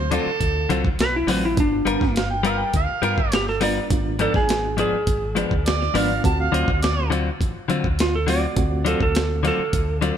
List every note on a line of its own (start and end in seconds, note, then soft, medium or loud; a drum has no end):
0.00 0.17 D2 medium
0.00 0.31 F#3 medium
0.00 0.31 A3 medium
0.00 0.31 C4 medium
0.00 0.31 F4 medium
0.00 0.13 C5 medium
0.11 0.29 D3 medium
0.11 0.29 F#3 medium
0.11 0.30 C4 medium
0.11 0.30 F4 medium
0.11 0.82 A4 loud
0.11 closed hi-hat medium
0.26 muted fingered electric bass stroke soft
0.41 0.65 D2 medium
0.41 kick medium
0.41 closed hi-hat medium
0.69 0.96 C2 medium
0.69 0.87 D3 medium
0.69 0.88 F#3 medium
0.69 0.88 C4 medium
0.69 0.88 F4 medium
0.69 closed hi-hat medium
0.85 kick medium
0.99 1.25 B1 medium
0.99 1.14 B4 loud
0.99 snare loud
0.99 closed hi-hat medium
1.16 1.29 E4 medium
1.27 1.54 A1 medium
1.27 1.45 D3 medium
1.27 1.54 F#3 medium
1.27 1.46 F#3 medium
1.27 1.54 A3 medium
1.27 1.55 C4 medium
1.27 1.46 C4 medium
1.27 1.55 F4 medium
1.27 1.46 F4 medium
1.27 open hi-hat medium
1.31 1.44 B4 medium
1.45 1.58 E4 medium
1.56 1.81 G1 medium
1.56 2.65 A#3 medium
1.56 2.65 B3 medium
1.56 2.65 D4 medium
1.56 2.15 D4 medium
1.56 2.65 F4 medium
1.56 kick loud
1.56 closed hi-hat medium
1.85 1.98 G1 medium
1.85 2.03 G3 medium
1.85 2.04 B3 medium
1.85 2.04 F4 medium
1.85 2.04 A#4 medium
1.85 closed hi-hat medium
2.01 2.62 G1 medium
2.01 kick medium
2.01 snare soft
2.16 2.30 F5 medium
2.16 snare medium
2.16 closed hi-hat medium
2.30 2.44 G5 medium
2.43 2.62 G3 medium
2.43 2.62 B3 medium
2.43 2.62 F4 medium
2.43 2.63 A#4 medium
2.43 2.61 F5 medium
2.43 closed hi-hat medium
2.60 2.73 G5 medium
2.73 2.86 D2 medium
2.73 3.03 F5 medium
2.73 kick medium
2.73 closed hi-hat medium
3.02 3.15 G2 medium
3.02 3.20 G3 medium
3.02 3.20 B3 medium
3.02 3.21 F4 medium
3.02 3.21 A#4 loud
3.02 3.32 F5 medium
3.02 closed hi-hat medium
3.17 3.79 G1 medium
3.17 kick medium
3.32 3.48 G4 medium
3.32 snare loud
3.32 closed hi-hat medium
3.49 3.62 A4 medium
3.49 snare soft
3.61 3.79 G3 medium
3.61 3.88 A#3 medium
3.61 3.79 B3 medium
3.61 3.88 B3 medium
3.61 3.89 D4 medium
3.61 3.79 F4 medium
3.61 3.89 F4 medium
3.61 3.80 A#4 medium
3.61 4.19 D5 medium
3.61 open hi-hat medium
3.90 4.27 G#1 medium
3.90 4.99 A#3 medium
3.90 4.99 B3 medium
3.90 4.99 D4 medium
3.90 4.99 F4 medium
3.90 kick loud
3.90 closed hi-hat medium
4.19 4.37 G#2 medium
4.19 4.37 F3 medium
4.19 4.38 B3 medium
4.19 4.38 D4 medium
4.19 4.35 A4 medium
4.19 closed hi-hat medium
4.34 4.83 G#1 medium
4.34 4.77 G#4 medium
4.34 kick medium
4.34 snare soft
4.49 snare loud
4.49 closed hi-hat medium
4.77 4.95 G#2 medium
4.77 4.95 F3 medium
4.77 4.96 B3 medium
4.77 4.96 D4 medium
4.77 5.92 G#4 medium
4.77 closed hi-hat medium
4.93 muted fingered electric bass stroke soft
5.07 5.43 G#1 medium
5.07 kick medium
5.07 closed hi-hat medium
5.35 5.53 G#2 medium
5.35 5.54 F3 medium
5.35 5.54 B3 medium
5.35 5.54 D4 medium
5.35 closed hi-hat medium
5.51 5.88 D2 medium
5.51 kick medium
5.66 5.98 D5 medium
5.66 snare loud
5.66 closed hi-hat medium
5.82 snare soft
5.94 6.19 G#1 medium
5.94 6.12 G#2 medium
5.94 6.12 F3 medium
5.94 6.21 A#3 medium
5.94 6.21 B3 medium
5.94 6.12 B3 medium
5.94 6.22 D4 medium
5.94 6.13 D4 loud
5.94 6.22 F4 medium
5.94 6.24 F5 medium
5.94 open hi-hat medium
6.24 6.48 D2 medium
6.24 7.32 A3 medium
6.24 7.32 C4 medium
6.24 7.32 F4 medium
6.24 7.32 F#4 medium
6.24 6.38 A5 medium
6.24 kick loud
6.24 closed hi-hat medium
6.40 6.82 F5 medium
6.52 6.65 D2 medium
6.52 6.70 D3 medium
6.52 6.70 F#3 medium
6.52 6.71 C4 loud
6.52 6.71 F4 loud
6.52 closed hi-hat medium
6.68 7.29 D2 medium
6.68 kick medium
6.83 7.11 D5 medium
6.83 snare loud
6.83 closed hi-hat medium
7.10 7.28 D3 medium
7.10 7.29 F#3 medium
7.10 7.29 C4 medium
7.10 7.29 F4 medium
7.10 closed hi-hat medium
7.41 7.53 A1 medium
7.41 kick medium
7.41 closed hi-hat medium
7.68 7.86 D3 medium
7.68 7.82 D3 medium
7.68 7.87 F#3 medium
7.68 7.87 C4 medium
7.68 7.87 F4 medium
7.68 closed hi-hat medium
7.84 8.45 D2 medium
7.84 kick medium
7.99 8.14 F4 medium
7.99 snare loud
7.99 closed hi-hat medium
8.15 8.28 A4 medium
8.27 8.45 D3 medium
8.27 8.45 F#3 medium
8.27 8.55 A3 medium
8.27 8.55 C4 medium
8.27 8.45 C4 medium
8.27 8.55 F4 medium
8.27 8.46 F4 medium
8.27 8.55 F#4 medium
8.27 8.85 D5 medium
8.27 open hi-hat medium
8.56 8.93 D2 medium
8.56 9.64 A3 medium
8.56 9.64 C4 medium
8.56 9.65 F4 medium
8.56 9.65 F#4 medium
8.56 kick loud
8.56 closed hi-hat medium
8.85 9.03 D3 medium
8.85 9.03 F#3 medium
8.85 9.04 C4 medium
8.85 9.04 F4 medium
8.85 9.01 A4 medium
8.85 closed hi-hat medium
9.00 9.49 D2 medium
9.00 9.44 A4 medium
9.00 kick medium
9.15 snare medium
9.15 closed hi-hat medium
9.43 9.61 D3 medium
9.43 9.62 F#3 medium
9.43 9.62 C4 medium
9.43 9.62 F4 medium
9.43 snare soft
9.43 closed hi-hat medium
9.47 10.17 A4 medium
9.59 muted fingered electric bass stroke soft
9.73 10.10 D2 medium
9.73 kick medium
9.73 closed hi-hat medium
10.01 10.17 D3 medium
10.01 10.17 F#3 medium
10.01 10.17 C4 medium
10.01 10.17 F4 medium
10.01 closed hi-hat medium